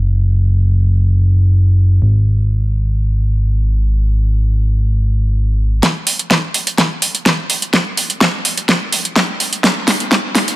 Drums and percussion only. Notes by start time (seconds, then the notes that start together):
5.83 kick, snare, closed hi-hat
6.07 open hi-hat
6.19 closed hi-hat
6.31 kick, snare, closed hi-hat
6.54 open hi-hat
6.67 closed hi-hat
6.78 kick, snare, closed hi-hat
7.02 open hi-hat
7.15 closed hi-hat
7.26 kick, snare, closed hi-hat
7.50 open hi-hat
7.62 closed hi-hat
7.73 kick, snare, closed hi-hat
7.97 open hi-hat
8.10 closed hi-hat
8.21 kick, snare, closed hi-hat
8.45 open hi-hat
8.57 closed hi-hat
8.69 kick, snare, closed hi-hat
8.92 open hi-hat
9.05 closed hi-hat
9.16 kick, snare, closed hi-hat
9.40 open hi-hat
9.53 closed hi-hat
9.64 kick, snare, closed hi-hat
9.88 snare, open hi-hat
10.00 closed hi-hat
10.12 kick, snare, closed hi-hat
10.35 snare, open hi-hat
10.48 closed hi-hat